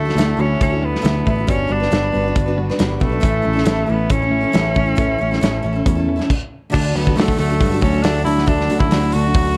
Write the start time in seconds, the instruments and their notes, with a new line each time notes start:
Already playing: picked electric bass D2, clean electric guitar D3 A3, string section F#3 D4 E4, tenor saxophone A3
0.05 steel-string acoustic guitar E4 F#4 A4, snare
0.15 picked electric bass D2, steel-string acoustic guitar D3 A3 E4 F#4 A4, clean electric guitar D3 A3, snare, closed hi-hat
0.37 picked electric bass D2, clean electric guitar D3 A3, steel-string acoustic guitar A3 E4 F#4 A4, tenor saxophone C#4
0.60 picked electric bass D2, clean electric guitar D3 A3, tenor saxophone C#4, kick, closed hi-hat
0.69 steel-string acoustic guitar E4 F#4 A4
0.82 clean electric guitar D3 A3, tenor saxophone B3
0.95 snare
1.02 picked electric bass D2, steel-string acoustic guitar D3 A3 E4 F#4 A4, clean electric guitar D3 A3, closed hi-hat
1.06 snare
1.25 picked electric bass A1, clean electric guitar D3 A3, steel-string acoustic guitar A3 E4 F#4 A4, kick
1.29 tenor saxophone B3
1.36 steel-string acoustic guitar F#4 A4
1.40 steel-string acoustic guitar E4
1.47 picked electric bass G1, steel-string acoustic guitar G3 D4 F#4 B4, clean electric guitar G3 B3 D4, string section G3 B3 F#4, tenor saxophone C#4, kick, closed hi-hat
1.67 picked electric bass G1, steel-string acoustic guitar G3 D4 F#4 B4, clean electric guitar G3 B3
1.72 tenor saxophone D4
1.80 steel-string acoustic guitar D4 F#4 B4, snare
1.91 picked electric bass G1, steel-string acoustic guitar G3 D4 F#4 B4, clean electric guitar G3 B3, snare, closed hi-hat
2.12 picked electric bass G1, steel-string acoustic guitar G3 D4 F#4, clean electric guitar G3 B3
2.17 steel-string acoustic guitar B4
2.24 steel-string acoustic guitar F#4 B4
2.28 steel-string acoustic guitar D4
2.35 picked electric bass G1, clean electric guitar G3 B3, kick, closed hi-hat
2.46 steel-string acoustic guitar D4 F#4 B4
2.58 clean electric guitar G3 B3
2.69 steel-string acoustic guitar D4 F#4 B4, snare
2.79 picked electric bass G1, clean electric guitar G3 B3, steel-string acoustic guitar G3 D4 F#4 B4, snare, closed hi-hat
3.00 picked electric bass B1, steel-string acoustic guitar G3 D4 F#4 B4, clean electric guitar G3 B3, tenor saxophone A3, kick
3.09 steel-string acoustic guitar D4 F#4 B4
3.20 picked electric bass A1, steel-string acoustic guitar A2 E3 A3 C#4 E4 A4, clean electric guitar A2 E3, string section A3 C#4 E4, kick, closed hi-hat
3.24 clean electric guitar A3
3.42 clean electric guitar A2, steel-string acoustic guitar A3 C#4 E4 A4
3.46 picked electric bass A1, clean electric guitar E3
3.53 steel-string acoustic guitar A3 C#4 E4 A4
3.58 snare
3.64 picked electric bass A1, steel-string acoustic guitar A2 E3 A3 C#4 E4 A4, clean electric guitar A2, snare, closed hi-hat
3.68 clean electric guitar E3
3.86 clean electric guitar A2 E3, steel-string acoustic guitar A3 C#4 E4 A4
3.90 picked electric bass A1, tenor saxophone B3
4.10 picked electric bass A1, clean electric guitar A2 E3, tenor saxophone C#4, kick, closed hi-hat
4.20 steel-string acoustic guitar A3 C#4 E4 A4
4.31 clean electric guitar A2 E3
4.41 steel-string acoustic guitar A3 C#4 E4 A4
4.52 steel-string acoustic guitar A2 E3 A3 C#4 E4 A4, clean electric guitar A2 E3, snare, closed hi-hat
4.56 picked electric bass A1
4.75 picked electric bass A1, clean electric guitar A2 E3, steel-string acoustic guitar A3 C#4 E4 A4, kick
4.86 steel-string acoustic guitar A3 C#4 E4 A4
4.95 picked electric bass A1, steel-string acoustic guitar A2 E3 A3 C#4 E4 A4, clean electric guitar A2, kick, closed hi-hat
4.99 clean electric guitar E3 A3
5.18 picked electric bass A1, clean electric guitar A2, steel-string acoustic guitar A3 C#4 E4 A4
5.31 steel-string acoustic guitar A3 C#4 E4 A4, snare
5.40 picked electric bass A1, steel-string acoustic guitar A2 E3 A3 C#4 E4 A4, clean electric guitar A2 E3, snare, closed hi-hat
5.63 picked electric bass A1, clean electric guitar A2 E3, steel-string acoustic guitar A3 C#4 E4 A4
5.73 steel-string acoustic guitar A3 C#4 E4 A4
5.86 picked electric bass E2, clean electric guitar A2 E3, kick, closed hi-hat
5.95 steel-string acoustic guitar C#4 E4 A4
5.99 steel-string acoustic guitar A3
6.08 clean electric guitar A2 E3
6.16 steel-string acoustic guitar A3 C#4 E4 A4
6.20 snare
6.30 kick, crash
6.70 steel-string acoustic guitar D3 A3 D4 F#4 A4, tenor saxophone D4
6.74 picked electric bass D2, clean electric guitar D3, string section A3 D4 F#4, kick, crash
6.94 picked electric bass D2, clean electric guitar F#3, steel-string acoustic guitar A3 D4 F#4 A4, tenor saxophone B3, open hi-hat
7.06 steel-string acoustic guitar D4 F#4 A4, kick
7.15 picked electric bass D2, steel-string acoustic guitar D3 A3 D4 F#4 A4, clean electric guitar F#3, tenor saxophone A3, open hi-hat
7.20 snare
7.28 kick
7.38 picked electric bass D2, tenor saxophone A3, clean electric guitar A3, open hi-hat
7.48 steel-string acoustic guitar D4 F#4 A4
7.61 picked electric bass G2, clean electric guitar F#3, kick, open hi-hat
7.71 steel-string acoustic guitar D4 F#4 A4
7.81 picked electric bass D2, steel-string acoustic guitar A3 D4 F#4, clean electric guitar A3, tenor saxophone C#4, kick, open hi-hat
7.85 steel-string acoustic guitar A4
7.94 steel-string acoustic guitar D4 F#4 A4
8.03 picked electric bass D2, steel-string acoustic guitar D3 A3 D4 F#4 A4, tenor saxophone D4, clean electric guitar D4, snare, open hi-hat
8.24 picked electric bass D2, clean electric guitar F#3, steel-string acoustic guitar A3 D4 F#4 A4, tenor saxophone E4, open hi-hat
8.38 snare
8.46 picked electric bass D2, steel-string acoustic guitar D3 A3 D4 F#4 A4, clean electric guitar D3, tenor saxophone D4, kick, open hi-hat
8.60 snare
8.68 picked electric bass D2, clean electric guitar F#3, steel-string acoustic guitar A3 D4 F#4, open hi-hat
8.72 steel-string acoustic guitar A4
8.79 steel-string acoustic guitar D4 F#4 A4, tenor saxophone E4, kick
8.91 picked electric bass D2, steel-string acoustic guitar D3 A3 D4 F#4 A4, clean electric guitar F#3, snare, open hi-hat
9.12 picked electric bass D2, clean electric guitar A3, tenor saxophone F#4, open hi-hat
9.24 steel-string acoustic guitar D4 F#4 A4
9.34 picked electric bass D2, clean electric guitar F#3, kick, open hi-hat
9.44 steel-string acoustic guitar D4 F#4 A4